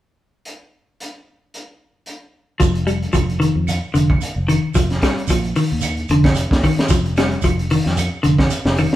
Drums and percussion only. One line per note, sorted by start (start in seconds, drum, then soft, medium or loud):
0.45 closed hi-hat soft
1.00 closed hi-hat soft
1.54 closed hi-hat soft
2.06 closed hi-hat soft
2.60 kick medium
2.60 closed hi-hat medium
2.60 shekere medium
2.75 closed hi-hat soft
2.87 closed hi-hat soft
2.87 claves soft
2.87 shekere soft
3.02 closed hi-hat soft
3.13 kick medium
3.13 closed hi-hat medium
3.13 claves soft
3.13 shekere medium
3.30 closed hi-hat soft
3.41 closed hi-hat soft
3.41 shekere soft
3.67 closed hi-hat medium
3.67 claves medium
3.67 shekere medium
3.94 closed hi-hat soft
3.94 shekere soft
4.09 kick medium
4.09 claves medium
4.21 closed hi-hat medium
4.21 shekere medium
4.48 closed hi-hat soft
4.48 claves medium
4.48 shekere soft
4.74 kick medium
4.74 closed hi-hat medium
4.74 shekere medium
4.90 snare soft
4.90 closed hi-hat soft
5.02 kick medium
5.02 snare medium
5.02 closed hi-hat soft
5.02 claves medium
5.02 shekere soft
5.18 closed hi-hat soft
5.27 kick medium
5.27 closed hi-hat medium
5.27 claves soft
5.27 shekere medium
5.44 closed hi-hat soft
5.56 open hi-hat medium
5.56 shekere soft
5.81 closed hi-hat medium
5.81 claves medium
5.81 shekere medium
5.97 closed hi-hat soft
6.08 closed hi-hat soft
6.08 shekere soft
6.24 kick medium
6.24 snare medium
6.24 closed hi-hat soft
6.24 claves medium
6.35 closed hi-hat medium
6.35 shekere medium
6.51 kick medium
6.51 snare medium
6.62 kick soft
6.62 open hi-hat soft
6.62 claves medium
6.62 shekere soft
6.78 snare medium
6.78 closed hi-hat soft
6.89 kick medium
6.89 closed hi-hat medium
6.89 shekere medium
7.06 closed hi-hat soft
7.16 snare medium
7.16 closed hi-hat soft
7.16 claves medium
7.16 shekere soft
7.31 closed hi-hat soft
7.42 kick medium
7.42 closed hi-hat medium
7.42 claves medium
7.42 shekere medium
7.59 closed hi-hat soft
7.70 open hi-hat medium
7.70 shekere soft
7.86 snare soft
7.97 closed hi-hat medium
7.97 claves medium
7.97 shekere medium
8.24 closed hi-hat soft
8.24 shekere soft
8.38 kick medium
8.38 snare medium
8.38 claves medium
8.50 closed hi-hat medium
8.50 shekere medium
8.66 snare medium
8.77 open hi-hat medium
8.77 claves medium
8.77 shekere soft